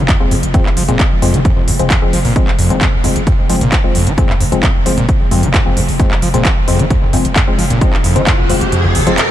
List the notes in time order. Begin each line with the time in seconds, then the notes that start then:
0.09 F2, kick, clap, closed hi-hat
0.20 F1 F3 G#3 C4
0.31 F1 F2, open hi-hat
0.43 F1, closed hi-hat
0.54 F2 F3 G#3 C4, kick, closed hi-hat
0.66 F1, clap
0.77 F1 F3, open hi-hat
0.89 F1 A#2 F3 G#3 C4, closed hi-hat, mid tom
1.00 kick, clap, closed hi-hat
1.11 F1
1.22 F1 F2 F3 G#3 C4, open hi-hat
1.34 F1 F3, closed hi-hat, mid tom
1.45 F2, kick, closed hi-hat
1.57 F1
1.68 F1 F2, open hi-hat
1.79 F1 F3 G#3 C4, closed hi-hat, mid tom
1.90 F2, kick, clap, closed hi-hat
2.02 F1 F3 G#3 C4
2.13 F1 F3, open hi-hat
2.25 F1 A#2, open hi-hat
2.36 F3 G#3 C4, kick, closed hi-hat
2.48 F1, clap
2.59 F1 F2, open hi-hat
2.70 F1 F3 G#3 C4, closed hi-hat, mid tom
2.81 F2, kick, clap, closed hi-hat
2.93 F1
3.04 F1 F2 F3 G#3 C4, open hi-hat
3.16 F1, closed hi-hat, mid tom
3.27 F2, kick, closed hi-hat
3.39 F1
3.50 F1 F3 G#3 C4, open hi-hat
3.61 F1 A#2, closed hi-hat, mid tom
3.72 kick, clap, closed hi-hat
3.84 F1 F3 G#3 C4
3.95 F1 F2, open hi-hat
4.07 F1 F3, closed hi-hat
4.18 F2 F3 G#3 C4, kick, closed hi-hat
4.29 F1, clap
4.40 F1 F2, open hi-hat
4.52 F1 F3 G#3 C4, closed hi-hat, mid tom
4.63 F2, kick, clap, closed hi-hat
4.75 F1
4.86 F1 F3 G#3 C4, open hi-hat
4.98 F1 A#2, closed hi-hat, mid tom
5.09 kick, closed hi-hat
5.20 F1
5.31 F1 F2 F3 G#3 C4, open hi-hat
5.43 F1 F3, closed hi-hat, mid tom
5.54 F2, kick, clap, closed hi-hat
5.66 F1 F3 G#3 C4
5.77 F1 F2, open hi-hat
5.89 F1, open hi-hat
6.00 F2 F3 G#3 C4, kick, closed hi-hat, riser
6.11 F1, clap
6.22 F1 F3, open hi-hat
6.34 F1 A#2 F3 G#3 C4, closed hi-hat, mid tom
6.45 kick, clap, closed hi-hat
6.57 F1
6.68 F1 F2 F3 G#3 C4, open hi-hat
6.79 F1 F3, closed hi-hat, mid tom
6.90 F2, kick, closed hi-hat
7.02 F1
7.13 F1 F2 F3 G#3 C4, open hi-hat
7.25 F1, closed hi-hat, mid tom
7.36 F2, kick, clap, closed hi-hat
7.48 F1 F3 G#3 C4
7.59 F1 F3, open hi-hat
7.70 F1 A#2, closed hi-hat
7.81 F3 G#3 C4, kick, closed hi-hat
7.93 F1, clap
8.04 F1 F2, open hi-hat
8.16 F1 F3 G#3 C4, closed hi-hat, mid tom
8.27 F2, kick, clap, closed hi-hat
8.39 F1
8.50 F1 F2 F3 G#3 C4, open hi-hat
8.61 F1, closed hi-hat, mid tom
8.72 F2, closed hi-hat
8.84 F1, mid tom
8.95 F1 D#2, open hi-hat
9.07 F1 F3 G#3 C4, closed hi-hat, mid tom
9.18 clap, closed hi-hat